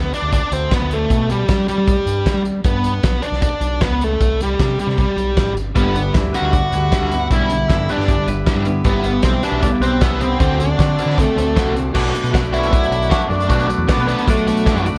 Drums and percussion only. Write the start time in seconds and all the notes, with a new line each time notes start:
0.13 closed hi-hat
0.32 kick, closed hi-hat
0.52 closed hi-hat
0.71 kick, snare, closed hi-hat
0.91 closed hi-hat
1.10 kick, closed hi-hat
1.30 closed hi-hat
1.48 kick, snare, closed hi-hat
1.68 closed hi-hat
1.87 kick, closed hi-hat
2.07 closed hi-hat
2.26 kick, snare, closed hi-hat
2.45 closed hi-hat
2.64 kick, closed hi-hat
2.84 closed hi-hat
3.03 kick, snare, closed hi-hat
3.22 closed hi-hat
3.33 snare
3.42 kick, closed hi-hat
3.61 closed hi-hat
3.81 kick, snare, closed hi-hat
4.01 closed hi-hat
4.20 kick, closed hi-hat
4.40 closed hi-hat
4.59 kick, snare, closed hi-hat
4.79 closed hi-hat
4.89 snare
4.98 kick, closed hi-hat
5.18 closed hi-hat
5.37 kick, snare, closed hi-hat
5.57 closed hi-hat
5.76 kick, closed hi-hat
5.95 closed hi-hat
6.14 kick, snare, closed hi-hat
6.34 closed hi-hat
6.53 kick, closed hi-hat
6.72 closed hi-hat
6.92 kick, snare, closed hi-hat
7.12 closed hi-hat
7.31 kick, closed hi-hat
7.50 closed hi-hat
7.69 kick, snare, closed hi-hat
7.89 closed hi-hat
8.00 snare
8.08 kick, closed hi-hat
8.27 closed hi-hat
8.46 kick, snare, closed hi-hat
8.65 closed hi-hat
8.84 kick, closed hi-hat
9.04 closed hi-hat
9.23 kick, snare, closed hi-hat
9.43 closed hi-hat
9.62 kick, closed hi-hat
9.82 closed hi-hat
10.01 kick, snare, closed hi-hat
10.21 closed hi-hat
10.40 kick, closed hi-hat
10.60 closed hi-hat
10.79 kick, snare, closed hi-hat
10.99 closed hi-hat
11.10 snare
11.18 kick, closed hi-hat
11.38 closed hi-hat
11.56 kick, snare, closed hi-hat
11.76 closed hi-hat
11.95 kick, crash
12.15 closed hi-hat
12.24 closed hi-hat
12.34 kick, snare, closed hi-hat
12.44 closed hi-hat
12.54 closed hi-hat
12.63 closed hi-hat
12.73 kick, closed hi-hat
12.83 closed hi-hat
12.92 closed hi-hat
13.02 closed hi-hat
13.11 kick, snare, closed hi-hat
13.21 closed hi-hat
13.31 snare, closed hi-hat
13.40 closed hi-hat
13.50 kick, closed hi-hat
13.59 closed hi-hat
13.70 closed hi-hat
13.89 kick, snare, closed hi-hat
13.99 closed hi-hat
14.09 closed hi-hat
14.19 closed hi-hat
14.28 kick, closed hi-hat
14.37 closed hi-hat
14.48 closed hi-hat
14.57 closed hi-hat
14.66 kick, snare, closed hi-hat
14.77 closed hi-hat
14.86 closed hi-hat